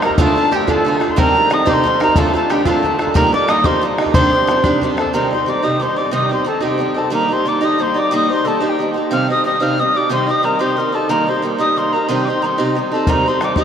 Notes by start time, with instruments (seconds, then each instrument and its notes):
0.02 steel-string acoustic guitar G3 A#3 D#4, five-string banjo A#4, flute A#4, tin whistle A#5, bodhran
0.10 bodhran
0.18 steel-string acoustic guitar D2 A2 D3 A3 D4 F4, five-string banjo A4, flute A4, tin whistle A5, bodhran
0.35 steel-string acoustic guitar D3 A3 D4 F4, bodhran
0.51 steel-string acoustic guitar D3 A3 D4 F4, flute G4, five-string banjo G4
0.56 tin whistle G5
0.67 steel-string acoustic guitar D2 A2 D3 A3 D4 F4, flute A4, five-string banjo A4, tin whistle A5, bodhran
0.85 steel-string acoustic guitar D3 A3 D4 F4
1.00 steel-string acoustic guitar D3 A3 D4 F4, bodhran
1.09 tin whistle C6, bodhran
1.16 steel-string acoustic guitar C3 D#3 G3 C4 D#4, five-string banjo A#4, flute A#4, tin whistle A#5, bodhran
1.34 steel-string acoustic guitar G3 C4 D#4, bodhran
1.50 steel-string acoustic guitar D#3 G3 C4 D#4, five-string banjo D#5, flute D#5, tin whistle D#6, bodhran
1.65 steel-string acoustic guitar C3 D#3 G3 C4 D#4, five-string banjo C5, flute C5, tin whistle D6, bodhran
1.73 tin whistle C6
1.84 steel-string acoustic guitar D#3 G3 C4 D#4, bodhran
2.00 steel-string acoustic guitar G3 C4 D#4, five-string banjo A#4, flute A#4, tin whistle A#5, bodhran
2.08 bodhran
2.16 steel-string acoustic guitar D2 A2 D3 A3 D4 F4, five-string banjo A4, flute A4, tin whistle A5, bodhran
2.34 steel-string acoustic guitar D3 A3 D4 F4, flute A4, tin whistle A5, bodhran
2.50 steel-string acoustic guitar D3 A3 D4 F4, five-string banjo G4, flute G4, tin whistle G5, bodhran
2.65 steel-string acoustic guitar D2 A2 D3 A3 D4 F4, five-string banjo A4, flute A4, tin whistle C6, bodhran
2.70 tin whistle A5
2.83 steel-string acoustic guitar D3 A3 D4 F4, bodhran
2.99 steel-string acoustic guitar D3 A3 D4 F4, flute A4, bodhran
3.07 bodhran
3.14 steel-string acoustic guitar D#3 G3 A#3 D#4, flute A#4, five-string banjo A#4, tin whistle A#5, bodhran
3.32 steel-string acoustic guitar G3 A#3 D#4, flute D5, five-string banjo D5, tin whistle D6, bodhran
3.48 steel-string acoustic guitar D#3 G3 A#3 D#4, flute D#5, five-string banjo D#5, tin whistle D#6, bodhran
3.64 steel-string acoustic guitar D#3 G3 A#3 D#4, flute C5, five-string banjo C5, tin whistle C6, bodhran
3.81 steel-string acoustic guitar D#3 G3 A#3 D#4
3.98 steel-string acoustic guitar G3 A#3 D#4, bodhran
4.06 bodhran
4.14 steel-string acoustic guitar C3 D#3 G3 C4 D4, flute C5, five-string banjo C5, tin whistle C6, bodhran
4.32 steel-string acoustic guitar G3 C4 D4, bodhran
4.47 steel-string acoustic guitar D#3 G3 C4 D4, bodhran
4.64 steel-string acoustic guitar C3 D#3 G3 C4 D4, bodhran
4.82 steel-string acoustic guitar D#3 G3 C4 D4, bodhran
4.97 steel-string acoustic guitar G3 C4 D4, flute A4, tin whistle A5, bodhran
5.06 bodhran
5.13 steel-string acoustic guitar C3 D#3 G3 C4 D#4, flute A#4, tin whistle A#5
5.30 steel-string acoustic guitar G3 C4 D#4, flute C5, tin whistle C6
5.46 steel-string acoustic guitar D#3 G3 C4 D#4, flute D5, tin whistle D6
5.63 steel-string acoustic guitar C3 D#3 G3 C4 D#4, flute D#5, tin whistle D#6
5.80 steel-string acoustic guitar D#3 G3 C4 D#4, flute C5, tin whistle C6
5.96 steel-string acoustic guitar G3 C4 D#4, flute D5, tin whistle D6
6.11 steel-string acoustic guitar C3 D#3 G3 C4 D#4, flute D#5, tin whistle D#6
6.29 steel-string acoustic guitar G3 C4 D#4, flute C5, tin whistle C6
6.44 steel-string acoustic guitar D#3 G3 C4 D#4, flute A4, tin whistle A5
6.60 steel-string acoustic guitar C3 D#3 G3 C4 D#4, flute G4, tin whistle G5
6.78 steel-string acoustic guitar D#3 G3 C4 D#4
6.94 steel-string acoustic guitar G3 C4 D#4, flute A4, tin whistle A5
7.10 steel-string acoustic guitar D#3 G3 A#3 D#4, flute A#4, tin whistle A#5
7.29 steel-string acoustic guitar G3 A#3 D#4, flute C5
7.33 tin whistle C6
7.45 steel-string acoustic guitar D#3 G3 A#3 D#4, flute D5, tin whistle D6
7.61 steel-string acoustic guitar D#3 G3 A#3 D#4, flute D#5, tin whistle D#6
7.78 steel-string acoustic guitar D#3 G3 A#3 D#4, flute C5, tin whistle C6
7.94 steel-string acoustic guitar G3 A#3 D#4, flute D5
7.99 tin whistle D6
8.11 steel-string acoustic guitar D#3 G3 A#3 D#4, flute D#5
8.15 tin whistle D#6
8.29 steel-string acoustic guitar G3 A#3 D#4, flute C5, tin whistle C6
8.45 steel-string acoustic guitar D#3 G3 A#3 D#4, flute A4, tin whistle A5
8.60 steel-string acoustic guitar D#3 G3 A#3 D#4, flute G4, tin whistle A5
8.69 tin whistle G5
8.79 steel-string acoustic guitar D#3 G3 A#3 D#4
8.94 steel-string acoustic guitar G3 A#3 D#4
9.11 steel-string acoustic guitar C3 D#3 G3 C4 D#4, flute F5, tin whistle F6
9.28 steel-string acoustic guitar G3 C4 D#4, flute D#5, tin whistle D#6
9.44 steel-string acoustic guitar D#3 G3 C4 D#4, flute D#5, tin whistle D#6
9.60 steel-string acoustic guitar C3 D#3 G3 C4 D#4, flute F5, tin whistle F6
9.78 steel-string acoustic guitar D#3 G3 C4 D#4, flute D#5, tin whistle D#6
9.94 steel-string acoustic guitar G3 C4 D#4, flute D5, tin whistle D6
10.09 steel-string acoustic guitar C3 D#3 G3 C4 D#4, flute C5, tin whistle C6
10.27 steel-string acoustic guitar G3 C4 D#4, flute D#5, tin whistle D#6
10.43 steel-string acoustic guitar D#3 G3 C4 D#4, flute A#4, tin whistle A#5
10.59 steel-string acoustic guitar C3 D#3 G3 C4 D#4, flute C5, tin whistle C6
10.77 steel-string acoustic guitar D#3 G3 C4 D#4, flute A#4
10.92 steel-string acoustic guitar G3 C4 D#4, flute A4, tin whistle A5
11.09 steel-string acoustic guitar D#3 G3 A#3 D#4, flute A#4, tin whistle A#5
11.27 steel-string acoustic guitar G3 A#3 D#4, flute C5, tin whistle C6
11.42 steel-string acoustic guitar D#3 G3 A#3 D#4
11.58 steel-string acoustic guitar D#3 G3 A#3 D#4, flute D#5, tin whistle D#6
11.76 steel-string acoustic guitar D#3 G3 A#3 D#4, tin whistle C6
11.92 steel-string acoustic guitar G3 A#3 D#4, flute A#4, tin whistle A#5
12.08 steel-string acoustic guitar C3 D#3 G3 C4 D#4, flute C5, tin whistle C6
12.25 steel-string acoustic guitar C4 D#4, tin whistle C6 D6
12.30 steel-string acoustic guitar G3
12.42 steel-string acoustic guitar D#3 G3 C4 D#4, tin whistle A#5 C6
12.58 steel-string acoustic guitar C3 D#3 G3 C4 D#4
12.75 steel-string acoustic guitar D#3 G3 C4 D#4
12.91 steel-string acoustic guitar G3 C4 D#4, flute A4, tin whistle A5
13.07 steel-string acoustic guitar C3 D#3 G3 C4 D#4, flute A#4, tin whistle A#5, bodhran
13.25 steel-string acoustic guitar C4 D#4, flute C5, tin whistle C6
13.29 steel-string acoustic guitar G3
13.40 steel-string acoustic guitar D#3 G3 C4 D#4, flute D5, tin whistle D6, bodhran
13.56 steel-string acoustic guitar C3 D#3 G3 C4 D#4, flute D#5, bodhran
13.60 tin whistle D#6